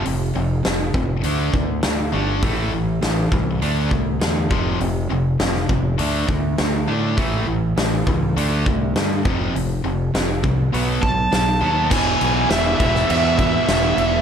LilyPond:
<<
  \new Staff \with { instrumentName = "Lead electric guitar" } { \time 4/4 \key f \lydian \tempo 4 = 101 r1 | r1 | r1 | r1 |
r2 r8 a''4. | \key e \phrygian gis''4 e''4 e''8 e''4. | }
  \new Staff \with { instrumentName = "Distorted electric guitar" } { \clef bass \time 4/4 \key f \lydian <f, c>8 <f, c>8 <f, c>8 <f, c>8 <d a d'>8 <d a>8 <d a>8 <d a d'>8 | <a, e a>8 <a, e>8 <a, e>8 <a, e>8 <d a d'>8 <d a>8 <d a>8 <f, c f>8 | <f, c>8 <f, c>8 <f, c>8 <f, c>8 <d a d'>8 <d a>8 <d a>8 <d a d'>8 | <a, e a>8 <a, e>8 <a, e>8 <a, e>8 <d a d'>8 <d a>8 <d a>8 <f, c f>8 |
<f, c>8 <f, c>8 <f, c>8 <f, c>8 <b, fis b>8 <b, fis>8 <b, fis>8 <b, fis b>8 | \key e \phrygian <e, b, e>4. <e, b, e>2~ <e, b, e>8 | }
  \new Staff \with { instrumentName = "Distorted electric guitar" } { \clef bass \time 4/4 \key f \lydian <f, c>8 <f, c>8 <f, c>8 <f, c>8 <d a d'>8 <d a>8 <d a>8 <d a d'>8 | <a, e a>8 <a, e>8 <a, e>8 <a, e>8 <d a d'>8 <d a>8 <d a>8 <f, c f>8 | <f, c>8 <f, c>8 <f, c>8 <f, c>8 <d a d'>8 <d a>8 <d a>8 <d a d'>8 | <a, e a>8 <a, e>8 <a, e>8 <a, e>8 <d a d'>8 <d a>8 <d a>8 <f, c f>8 |
<f, c>8 <f, c>8 <f, c>8 <f, c>8 <b, fis b>8 <b, fis>8 <b, fis>8 <b, fis b>8 | \key e \phrygian <e, b, e>4. <e, b, e>2~ <e, b, e>8 | }
  \new Staff \with { instrumentName = "Distorted electric guitar" } { \clef bass \time 4/4 \key f \lydian r1 | r1 | r1 | r1 |
r1 | \key e \phrygian <e, b, e>4 <e, b, e>8 <e, b, e>8 <e, b, e>4 <e, b, e>8 <e, b, e>8 | }
  \new Staff \with { instrumentName = "Fingered electric bass" } { \clef bass \time 4/4 \key f \lydian f,,8 f,,8 f,,8 f,,8 d,8 d,8 d,8 g,,8 | a,,8 a,,8 a,,8 c,8 d,8 c,8 e,8 f,,8 | f,,8 f,,8 f,,8 f,,8 d,8 d,8 d,8 a,8 | a,,8 a,,8 a,,8 cis,8 d,8 c,8 g,8 f,,8 |
f,,8 f,,8 f,,8 c,8 b,,8 b,,8 b,,8 dis,8 | \key e \phrygian e,,8 b,,8 e,,8 e,,8 e,4 e,,8 e,,8 | }
  \new DrumStaff \with { instrumentName = "Drums" } \drummode { \time 4/4 hho4 <hho sn>8 bd8 hho8 bd8 <hho sn>4 | <hho bd>4 <hho sn>8 bd8 hho8 bd8 <hho sn>8 bd8 | hho4 <hho sn>16 sn16 bd8 hho8 bd8 <hho sn>4 | <hho bd>4 <hho sn>8 bd8 hho8 bd8 <hho sn>8 bd8 |
hho4 <hho sn>8 bd8 hho8 bd8 <hho sn>4 | <cymc bd>8 cymc8 <cymc sn>8 <cymc bd>16 sn16 cymc8 <cymc bd>8 <cymc sn>8 cymc8 | }
>>